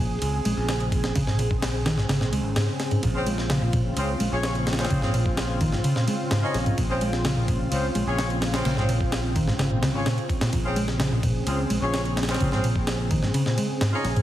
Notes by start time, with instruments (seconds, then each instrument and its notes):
Already playing: fingered electric bass A#1, analog synth pad C#3 C4 G#4
0.22 fingered electric bass C#2, ride
0.45 fingered electric bass A#1, picked electric bass G#3, ride
0.57 fingered electric bass A#1
0.69 snare, ride
0.80 ride
0.92 kick, ride
1.04 snare
1.15 fingered electric bass A#1, picked electric bass C#3, kick, ride
1.27 picked electric bass G#2, snare
1.39 picked electric bass A#2, ride
1.51 kick
1.62 snare, ride
1.86 picked electric bass D#3, snare, ride
1.97 picked electric bass G#2, snare
2.09 fingered electric bass G#1, picked electric bass C#3, snare, ride
2.21 picked electric bass A#2, snare
2.33 fingered electric bass C#2, picked electric bass G#3, ride
2.44 fingered electric bass G#1
2.56 picked electric bass G#2, snare, ride
2.80 snare, ride
2.91 picked electric bass G#2, ride
3.03 fingered electric bass A#1, picked electric bass A#2, analog synth pad F4, kick, ride
3.15 horn section C4 C#4 F4 G#4 C5
3.26 picked electric bass G#3, ride
3.38 snare
3.50 picked electric bass C#3, snare, ride
3.62 picked electric bass A#2
3.73 picked electric bass A#2, kick, ride
3.97 fingered electric bass C#2, horn section C4 C#4 F4 G#4 C5, ride
4.20 fingered electric bass A#1, picked electric bass G#3, ride
4.32 fingered electric bass A#1, horn section C#4 F4 G#4 C#5
4.43 snare, ride
4.55 ride
4.67 snare, ride
4.73 snare, ride
4.79 horn section C4 C#4 F4 G#4 C5, snare, ride
4.85 snare, ride
4.90 fingered electric bass A#1, picked electric bass C#3, kick, ride
5.02 picked electric bass G#2, horn section C4 C#4 F4 G#4 C5, snare
5.14 picked electric bass A#2, ride
5.26 kick
5.37 snare, ride
5.61 picked electric bass D#3, kick, ride
5.72 picked electric bass G#2, snare
5.84 picked electric bass C#3, ride
5.96 picked electric bass A#2, snare
6.07 picked electric bass G#3, ride
6.31 picked electric bass G#2, snare, ride
6.43 horn section C#4 D#4 F4 G#4 D#5
6.54 fingered electric bass A#1, snare, ride
6.66 picked electric bass G#2, ride
6.78 fingered electric bass A#1, picked electric bass A#2, kick, ride
6.90 horn section C4 C#4 F4 G#4 C5
7.01 picked electric bass G#3, ride
7.13 snare
7.25 picked electric bass C#3, snare, ride
7.37 picked electric bass A#2
7.48 picked electric bass A#2, kick, ride
7.72 fingered electric bass C#2, horn section C4 C#4 F4 G#4 C5, ride
7.95 fingered electric bass A#1, picked electric bass G#3, ride
8.07 fingered electric bass A#1, horn section C#4 F4 G#4 C#5
8.18 snare, ride
8.30 ride
8.42 snare, ride
8.54 horn section C4 C#4 F4 G#4 C5, snare, ride
8.65 fingered electric bass A#1, picked electric bass C#3, snare, ride
8.77 picked electric bass G#2, horn section C4 C#4 F4 G#4 C5, snare
8.89 picked electric bass A#2, ride
9.01 kick
9.12 snare, ride
9.36 picked electric bass D#3, kick, ride
9.47 picked electric bass G#2, snare
9.59 fingered electric bass G#1, picked electric bass C#3, snare, ride
9.71 picked electric bass A#2
9.82 fingered electric bass C#2, picked electric bass C#3, snare, ride
9.94 fingered electric bass G#1, horn section C#4 F4 G#4 C#5
10.06 picked electric bass A#2, snare, ride
10.18 ride
10.29 kick, ride
10.41 picked electric bass A#2, snare, ride
10.53 fingered electric bass A#1, picked electric bass A#2, analog synth pad G#4, kick, ride
10.65 horn section C4 C#4 F4 G#4 C5
10.76 picked electric bass G#3, ride
10.88 snare
11.00 picked electric bass C#3, snare, ride
11.12 picked electric bass A#2
11.23 picked electric bass A#2, kick, ride
11.47 fingered electric bass C#2, horn section C4 C#4 F4 G#4 C5, ride
11.70 fingered electric bass A#1, picked electric bass G#3, ride
11.82 fingered electric bass A#1, horn section C#4 F4 G#4 C#5
11.94 snare, ride
12.05 ride
12.17 snare, ride
12.23 snare, ride
12.29 horn section C4 C#4 F4 G#4 C5, snare, ride
12.34 snare, ride
12.40 fingered electric bass A#1, picked electric bass C#3, kick, ride
12.52 picked electric bass G#2, horn section C4 C#4 F4 G#4 C5, snare
12.64 picked electric bass A#2, ride
12.76 kick
12.87 snare, ride
13.11 picked electric bass D#3, kick, ride
13.23 picked electric bass G#2, snare
13.34 picked electric bass C#3, ride
13.46 picked electric bass A#2, snare
13.58 picked electric bass G#3, ride
13.81 picked electric bass G#2, snare, ride
13.93 horn section C#4 D#4 F4 G#4 D#5
14.05 fingered electric bass A#1, snare, ride
14.16 picked electric bass G#2, ride